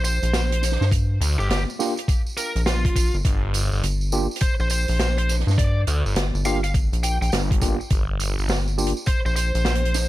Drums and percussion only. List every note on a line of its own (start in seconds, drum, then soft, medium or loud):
0.04 closed hi-hat medium
0.04 tambourine loud
0.23 closed hi-hat medium
0.23 tambourine soft
0.33 snare loud
0.33 closed hi-hat medium
0.33 tambourine medium
0.52 closed hi-hat medium
0.62 snare soft
0.62 closed hi-hat medium
0.62 tambourine medium
0.72 snare soft
0.82 snare soft
0.82 tambourine soft
0.92 kick loud
0.92 closed hi-hat medium
0.92 tambourine medium
1.21 closed hi-hat medium
1.21 tambourine medium
1.40 tambourine soft
1.50 snare loud
1.50 closed hi-hat medium
1.50 tambourine soft
1.70 tambourine soft
1.80 snare soft
1.80 tambourine medium
1.97 closed hi-hat medium
1.97 tambourine soft
2.08 kick loud
2.08 closed hi-hat medium
2.08 tambourine medium
2.26 tambourine soft
2.37 closed hi-hat medium
2.37 tambourine loud
2.56 closed hi-hat medium
2.56 tambourine soft
2.66 snare loud
2.66 closed hi-hat medium
2.66 tambourine medium
2.85 kick loud
2.85 closed hi-hat medium
2.96 kick medium
2.96 closed hi-hat medium
2.96 tambourine loud
3.14 tambourine soft
3.25 kick loud
3.25 closed hi-hat loud
3.25 tambourine medium
3.54 closed hi-hat medium
3.54 tambourine loud
3.72 tambourine soft
3.83 closed hi-hat medium
3.83 tambourine medium
4.01 tambourine soft
4.12 tambourine loud
4.31 tambourine soft
4.36 closed hi-hat medium
4.41 kick loud
4.41 closed hi-hat medium
4.41 tambourine medium
4.60 tambourine soft
4.70 closed hi-hat medium
4.70 tambourine loud
4.88 closed hi-hat medium
4.88 tambourine soft
4.91 closed hi-hat soft
4.94 closed hi-hat soft
4.96 closed hi-hat soft
4.99 snare loud
4.99 closed hi-hat medium
4.99 tambourine medium
5.18 closed hi-hat medium
5.29 snare soft
5.29 closed hi-hat medium
5.29 tambourine medium
5.40 snare soft
5.48 snare soft
5.48 tambourine soft
5.58 kick loud
5.58 closed hi-hat medium
5.58 tambourine medium
5.87 closed hi-hat medium
5.87 tambourine medium
6.06 tambourine soft
6.16 snare loud
6.16 closed hi-hat medium
6.16 tambourine medium
6.35 tambourine soft
6.45 snare soft
6.45 tambourine loud
6.64 closed hi-hat medium
6.64 tambourine soft
6.74 kick loud
6.74 closed hi-hat medium
6.74 tambourine medium
6.93 closed hi-hat medium
6.93 tambourine soft
7.03 closed hi-hat medium
7.03 tambourine loud
7.22 closed hi-hat medium
7.22 tambourine soft
7.32 snare loud
7.32 closed hi-hat medium
7.32 tambourine medium
7.51 kick loud
7.51 closed hi-hat medium
7.61 kick medium
7.61 closed hi-hat medium
7.61 tambourine loud
7.81 tambourine soft
7.90 kick loud
7.90 closed hi-hat medium
7.90 tambourine soft
8.20 closed hi-hat medium
8.20 tambourine medium
8.39 tambourine soft
8.48 snare loud
8.48 tambourine medium
8.68 tambourine soft
8.78 tambourine medium
8.87 closed hi-hat medium
8.97 tambourine soft
9.06 kick loud
9.06 closed hi-hat medium
9.06 tambourine soft
9.26 tambourine soft
9.36 closed hi-hat medium
9.36 tambourine loud
9.55 closed hi-hat medium
9.55 tambourine soft
9.65 snare loud
9.65 closed hi-hat medium
9.65 tambourine soft
9.75 closed hi-hat medium
9.85 closed hi-hat medium
9.94 snare soft
9.94 closed hi-hat medium
9.94 tambourine loud